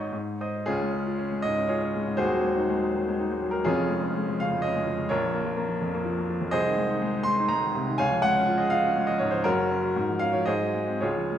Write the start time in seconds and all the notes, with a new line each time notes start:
Already playing: G#1 G#2 D#4 C#5 D#5 C#6
0.12 G#2
0.41 C5 D#5 D#6
0.66 C#2 C#4 F4 G#4
0.82 G#3
0.94 C#4
1.06 F4
1.18 C#4
1.32 G#3
1.42 G#2 D#5
1.58 C#4
1.68 F4 G#4 C#5
1.82 C#4
1.95 G#3
2.07 G#2
2.17 D#1 D#2 F#4 G#4 C5
2.32 F#3
2.44 G#3
2.57 D#4
2.70 G#3
2.82 F#3
2.95 D#3
3.08 G#3
3.19 D#4
3.31 G#3
3.42 F#3
3.51 D#3 A#4
3.64 F1 F2 C#4 F4 G#4
3.79 F3
3.90 G#3
4.04 C#4
4.16 G#3
4.28 F3
4.40 C#3 F5
4.53 G#3
4.62 C#4 D#5
4.75 G#3
4.87 F3
4.98 C#3
5.09 A#1 F4 A#4 C#5
5.23 F3
5.34 A#3
5.45 F3
5.57 A#3
5.68 F3
5.81 F2
5.94 A#3
6.05 F3
6.18 A#3
6.29 F3
6.41 F2
6.51 C2 G#4 C5 D#5
6.66 D#3
6.77 G#3
6.89 D#4
7.02 G#3
7.14 D#4
7.23 G#3 C6
7.38 D#4
7.48 G#3 A#5
7.63 D#3
7.75 C3
7.88 D#3
7.98 C#2 C#5 F5 G#5
8.11 F3
8.22 G#3 F#5
8.36 C#4
8.48 F4
8.58 G#4 D#5
8.70 F4 F5
8.84 C#4
8.97 G#3
9.07 F3 D#5
9.19 G#2 C#5
9.31 F3 C5
9.44 F#1 F#2 C#4 F#4 A#4
9.59 F#3
9.71 C#4
9.82 F#3
9.96 G#2
10.09 F3
10.19 C#4 F5
10.33 F3 C#5
10.46 G#2 G#4 C5 D#5
10.61 F#3
10.74 G#3
10.88 C4
11.01 C#2 F4 G#4 C#5
11.17 F3
11.31 G#3